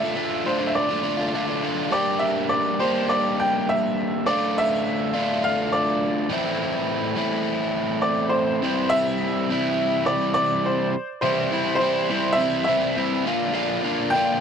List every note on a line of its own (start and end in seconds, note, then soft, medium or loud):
0.00 0.14 D3 medium
0.00 0.15 A3 medium
0.00 0.16 D4 medium
0.00 0.16 F4 medium
0.00 0.48 E5 loud
0.15 0.44 D3 medium
0.15 0.45 A3 medium
0.15 0.46 D4 medium
0.15 0.47 F4 medium
0.45 0.90 D3 medium
0.45 0.60 A3 medium
0.45 0.59 D4 medium
0.45 0.58 F4 medium
0.45 0.69 C5 medium
0.59 0.90 A3 medium
0.59 0.89 D4 medium
0.59 0.88 F4 medium
0.67 0.75 E5 medium
0.75 1.59 D5 medium
0.89 1.02 A3 medium
0.89 1.03 D4 medium
0.89 1.03 F4 medium
1.02 1.33 D3 medium
1.02 1.19 A3 medium
1.02 1.18 D4 medium
1.02 1.16 F4 medium
1.17 1.34 A3 soft
1.17 1.35 D4 medium
1.17 1.35 F4 medium
1.34 1.62 D3 medium
1.34 1.49 A3 medium
1.34 1.48 D4 medium
1.34 1.46 F4 medium
1.47 1.62 A3 medium
1.47 1.63 D4 medium
1.47 1.64 F4 medium
1.63 1.90 D3 medium
1.63 1.91 A3 medium
1.63 1.91 D4 medium
1.63 1.92 F4 medium
1.91 2.78 G3 medium
1.91 2.78 A#3 medium
1.91 2.80 D4 medium
1.91 2.79 G4 medium
1.91 2.23 D5 medium
2.19 2.51 E5 medium
2.49 2.81 D5 medium
2.80 4.26 G3 medium
2.80 4.26 A#3 medium
2.80 4.25 D4 medium
2.80 4.25 G4 medium
2.80 3.10 C5 medium
3.09 3.40 D5 medium
3.40 3.69 G5 medium
3.69 4.29 E5 medium
4.26 5.12 D3 medium
4.26 5.15 A3 medium
4.26 5.13 D4 medium
4.26 5.12 F4 medium
4.26 4.57 D5 medium
4.58 5.47 E5 loud
5.13 6.30 D3 medium
5.13 6.29 A3 medium
5.13 6.29 D4 medium
5.13 6.28 F4 medium
5.44 5.74 F5 medium
5.72 6.27 D5 medium
6.29 7.14 A2 medium
6.29 7.17 E3 medium
6.29 7.16 A3 loud
6.29 7.17 C4 loud
6.29 7.17 E4 medium
7.15 8.60 A2 medium
7.15 8.63 E3 medium
7.15 8.61 A3 medium
7.15 8.65 C4 medium
7.15 8.65 E4 loud
8.02 8.33 D5 medium
8.29 8.92 C5 medium
8.63 9.48 C3 medium
8.63 9.49 E3 medium
8.63 9.49 G3 loud
8.63 9.50 C4 loud
8.63 9.50 E4 medium
8.90 10.11 E5 loud
9.50 10.93 C3 medium
9.50 10.94 E3 medium
9.50 10.94 G3 medium
9.50 10.94 C4 medium
9.50 10.95 E4 loud
10.06 10.33 D5 medium
10.34 10.90 D5 loud
10.66 11.06 C5 medium
11.21 11.50 C3 loud
11.21 11.51 E3 loud
11.21 11.52 G3 loud
11.21 11.51 C4 medium
11.21 11.52 E4 loud
11.21 11.74 C5 medium
11.51 11.80 C3 medium
11.51 11.80 E3 medium
11.51 11.80 G3 medium
11.51 11.81 C4 medium
11.51 11.82 E4 medium
11.75 12.39 C5 medium
11.81 12.08 C3 loud
11.81 12.09 E3 loud
11.81 12.09 G3 loud
11.81 12.09 C4 loud
11.81 12.09 E4 loud
12.10 12.36 C3 medium
12.10 12.38 E3 medium
12.10 12.38 G3 loud
12.10 12.38 C4 medium
12.10 12.38 E4 medium
12.33 12.63 E5 loud
12.37 12.66 C3 medium
12.37 12.66 E3 medium
12.37 12.66 G3 medium
12.37 12.67 C4 medium
12.37 12.67 E4 loud
12.64 12.95 C3 loud
12.64 12.95 E3 loud
12.64 12.96 G3 medium
12.64 13.21 E5 medium
12.68 12.96 C4 loud
12.68 12.97 E4 loud
12.96 13.24 C3 medium
12.96 13.25 E3 medium
12.96 13.25 G3 medium
12.96 13.25 C4 medium
12.96 13.25 E4 loud
13.25 13.52 A#2 loud
13.25 13.52 D3 medium
13.25 13.52 A#3 medium
13.25 13.53 D4 loud
13.25 13.54 F4 loud
13.53 13.83 A#2 loud
13.53 13.83 D3 loud
13.53 13.83 A#3 loud
13.53 13.84 D4 loud
13.53 13.85 F4 loud
13.84 14.13 A#2 medium
13.84 14.13 D3 medium
13.84 14.14 A#3 medium
13.84 14.14 D4 medium
13.84 14.15 F4 medium
14.10 14.40 A#2 loud
14.10 14.40 D3 loud
14.10 14.40 G5 loud
14.15 14.40 A#3 loud
14.15 14.40 D4 loud
14.15 14.40 F4 loud